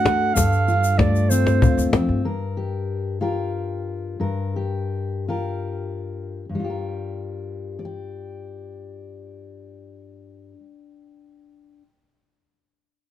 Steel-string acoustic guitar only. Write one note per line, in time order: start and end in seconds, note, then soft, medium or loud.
0.00 0.34 G2 medium
0.00 0.32 A3 medium
0.00 0.32 F#4 medium
0.00 0.33 A4 medium
0.05 0.32 D4 medium
0.35 2.23 G2 medium
0.35 2.20 A4 medium
0.68 1.61 F4 medium
0.98 2.20 A3 medium
1.31 1.93 C4 medium
1.63 2.21 F4 medium
1.94 2.25 C4 medium
2.25 4.19 G2 medium
2.25 3.22 A#4 medium
2.57 3.21 G4 soft
3.21 4.23 F4 soft
3.21 4.56 G4 soft
3.21 4.20 A#4 medium
4.20 6.48 G2 medium
4.20 5.29 A#4 medium
4.56 5.28 G4 soft
5.28 6.44 F4 soft
5.28 6.45 G4 soft
5.28 6.45 A#4 soft
6.49 10.53 G2 soft
6.55 10.58 G3 soft
6.60 10.63 F4 soft
6.64 7.79 G4 soft
6.70 7.85 A#4 soft
7.79 11.82 D5 soft
7.85 11.88 G5 soft